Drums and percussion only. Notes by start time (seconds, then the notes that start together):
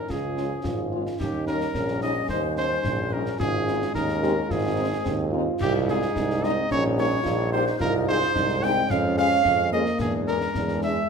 0.10 concert bass drum, snare
0.37 snare
0.64 concert bass drum, snare
1.07 snare
1.20 concert bass drum, snare, crash
1.47 snare
1.61 snare
1.74 concert bass drum, snare
1.88 snare
2.01 snare
2.29 concert bass drum, snare
2.57 snare
2.84 concert bass drum, snare
3.26 snare
3.40 concert bass drum, snare
3.68 snare
3.82 snare
3.95 concert bass drum, snare
4.09 snare
4.23 snare
4.50 concert bass drum, snare
5.05 concert bass drum, snare
5.61 concert bass drum, snare, crash
5.88 snare
6.02 snare
6.16 concert bass drum, snare
6.30 snare
6.44 snare
6.71 concert bass drum, snare
6.98 snare
7.26 concert bass drum, snare
7.67 snare
7.80 concert bass drum, snare
8.08 snare
8.21 snare
8.36 concert bass drum, snare
8.49 snare
8.62 snare
8.90 concert bass drum, snare
9.17 snare
9.45 concert bass drum, snare
9.86 snare
9.99 concert bass drum, snare, crash
10.27 snare
10.41 snare
10.55 concert bass drum, snare
10.68 snare
10.82 snare